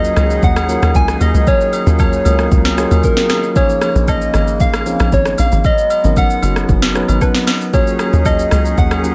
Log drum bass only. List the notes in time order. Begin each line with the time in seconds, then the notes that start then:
Already playing: D#2
0.17 C#2
0.43 D#2
0.82 D#2
0.95 C#2
1.21 D#2
1.34 C#2
1.87 D#2
2.25 C#2
2.52 C#2
2.91 D#2
3.95 A#1
4.34 G#1
4.60 A#1
5.00 A#1
5.13 G#1
5.39 A#1
5.52 G#1
6.04 G#1
6.43 F#1
6.69 F#1
7.09 G#1
8.13 D#2
8.52 C#2
8.78 D#2